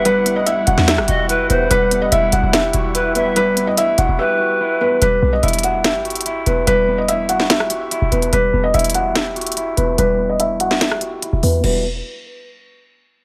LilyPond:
<<
  \new Staff \with { instrumentName = "Felt piano" } { \time 4/4 \key e \minor \tempo 4 = 145 b'8. dis''16 e''8 fis''8 e''4. b'8 | b'8. dis''16 e''8 fis''8 e''4. b'8 | b'8. dis''16 e''8 fis''8 e''4. b'8 | b'8. dis''16 e''8 fis''8 e''4. b'8 |
b'8. dis''16 e''8 fis''8 e''4. b'8 | b'8. dis''16 e''8 fis''8 e''4. b'8 | b'8. dis''16 e''8 fis''8 e''4. b'8 | b'8 r2. r8 | }
  \new Staff \with { instrumentName = "Pan flute" } { \time 4/4 \key e \minor r2 r8 dis''8 b'8 c''8 | r2. b'8 e''8 | r2 b'2 | r1 |
r1 | r1 | r1 | r1 | }
  \new Staff \with { instrumentName = "Analog synth pad" } { \time 4/4 \key e \minor << { fis''1~ | fis''1~ | fis''1 | r1 |
r1 | r1 | r1 | r1 | } \\ { <g e'>1 | <g e'>1~ | <g e'>1 | r1 |
r1 | r1 | r1 | r1 | } >> }
  \new Staff \with { instrumentName = "Clean electric guitar" } { \time 4/4 \key e \minor <g b e' fis' g'>8 b8 e'8 fis'8 g'8 fis'8 e'8 b8 | g8 b8 e'8 fis'8 g'8 fis'8 e'8 b8 | g8 b8 e'8 fis'8 g'8 fis'8 e'8 b8 | g8 b8 e'8 fis'8 g'8 fis'8 e'8 b8 |
g8 b8 e'8 fis'8 g'8 fis'8 e'8 b8 | g8 b8 e'8 fis'8 g'8 fis'8 e'8 b8 | g8 b8 e'8 fis'8 g'8 fis'8 e'8 b8 | <g b e' fis'>8 r2. r8 | }
  \new Staff \with { instrumentName = "808-style bass" } { \clef bass \time 4/4 \key e \minor e,,4. e,,16 e,8 g,,16 e,,8. fis,,16 e,,8 | e,,4 e,,8 e,,16 e,,8. e,,4.~ | e,,4. e,,16 e,,16 r2 | e,,8 b,,8 e,,4~ e,,16 g,,4~ g,,16 e,,8 |
e,,2. r16 e,,16 e,,8 | e,,8 e,,8 e,,2~ e,,8 e,,8 | e,,2. r16 e,,16 e,8 | e,,4 r2. | }
  \new DrumStaff \with { instrumentName = "Drums" } \drummode { \time 4/4 hh8 hh8 hh8 hh16 sn16 <hh sn>16 ss16 hh8 hh8 hh8 | hh8 hh8 hh8 hh8 <hh sn>8 hh8 hh8 hh8 | hh8 hh8 hh8 hh8 r4 r4 | hh4 hh32 hh32 hh32 hh32 hh8 <hh sn>8 hh32 hh32 hh32 hh32 hh8 hh8 |
hh4 hh8 hh16 sn16 <hh sn>16 ss16 hh8 hh8 <hh hho>16 hh16 | hh4 hh32 hh32 hh32 hh32 hh8 <hh sn>8 hh32 hh32 hh32 hh32 hh8 hh8 | hh4 hh8 hh16 sn16 <hh sn>16 ss16 hh8 hh8 hho8 | cymc4 r4 r4 r4 | }
>>